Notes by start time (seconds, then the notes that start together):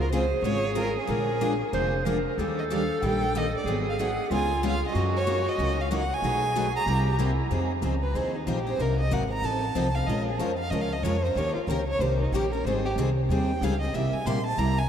Already playing: C#2 F4
0.01 A#4
0.12 C#3 G#3 C4 F4 G#4 C5
0.42 G#1 C#3 G#3 C4 F4 G#4 C#5
0.75 C#3 G#3 C4 F4 G#4 A#4
1.00 G#4
1.07 A#1 D3 F3 G#3 A#3 D4 F4 G#4 A#4
1.41 D3 F3 G#3 A#3 D4 F4 G#4 A#4
1.73 F1 D3 F3 G#3 A#3 D4 F4 G#4 A#4 C5
2.05 D3 F3 G#3 A#3 D4 F4 G#4 A#4
2.38 D#2 D#3 G3 A#3 D4 G4 A4
2.59 D#5
2.70 D#3 G3 A#3 D4 G4 F5
3.02 A#1 D#3 G3 A#3 D4 G4 G5
3.35 D#3 G3 A#3 D4 G4 D#5
3.57 D5
3.64 G#1 D#3 F#3 B3 D#4 G#4
3.89 F5
3.99 D#3 F#3 B3 D#4 G#4 F#5
4.30 C#2 C#3 G#3 B3 F4 G#4 G#5
4.63 C#3 G#3 B3 F4 G#4
4.68 F5
4.87 D#5
4.93 F#2 F#3 A#3 C#4 D#4 F#4
4.97 A#4
5.17 C#5
5.27 F#3 A#3 C#4 D#4 F#4 A#4
5.48 D#5
5.58 C#2 F#3 A#3 C#4 D#4 F#4 A#4
5.82 F5
5.91 F#3 A#3 C#4 D#4 F#4 A#4 F#5
6.14 G#5
6.22 B1 B2 F#3 A3 D#4 F#4 G#4 B4
6.56 B2 F#3 A3 D#4 F#4 B4
6.76 A#5
6.86 C2 C3 G3 A#3 E4 G4
7.18 C3 G3 A#3 E4 G4
7.51 F2 F3 C4 D#4 G#4
7.82 C#2 F3 C4 D#4 G#4
8.03 B4
8.14 D#2 F3 C4 D#4 G#4 C5
8.37 D#4
8.47 A#1 F3 C4 D#4 G4 G#4
8.67 C4 D#4 G#4 C5
8.78 C2 C3 F#3 A#3 D#4 A#4
9.00 D#5
9.11 G#1 C3 F#3 A#3 D#4 A#4 F#5
9.33 A#5
9.42 A1 F3 C4 D#4 A4 A5
9.75 C2 F3 C4 D#4 A4
9.95 C4 D#4 A4 F5
10.07 A#1 F3 G#3 C#4 F4 A#4 D#5
10.28 G#4
10.39 F2 F3 G#3 C#4 F4 A#4 C5
10.59 F5
10.70 C#2 F3 G#3 C#4 F4 A#4 D#5
10.82 F5
10.93 D#5
11.03 F2 F3 G#3 C#4 F4 A#4 C#5
11.23 F4 A#4 C5
11.27 C#4
11.36 D#2 D#3 A#3 C#4 G4 A#4 C#5
11.55 F4, muted upright bass stroke
11.67 C#2 D#3 A#3 C#4 G4 A#4
11.88 C#5
11.99 C2 D#3 A#3 C#4 G4 A#4 C5
12.22 D#4
12.32 A#1 D#3 A#3 C#4 G4 A#4
12.52 C#4 G4 A#4
12.64 G#1 D#3 G3 C4 D#4 G#4 C5
12.85 G4
12.96 C2 D#3 G3 C4 D#4 G#4
13.29 D#2 D#3 G3 C4 D#4 G#4 G5
13.61 C#2 D#3 G3 C4 D#4 G#4 F5
13.81 C4 D#4 G#4 D#5
13.94 C2 C3 G3 A#3 E4 G4 E5
14.12 G#5, muted upright bass stroke
14.25 A#1 C3 G3 A#3 E4 G4 C6
14.46 A5
14.58 C2 C3 G3 A#3 E4 G4 A#5
14.78 G#5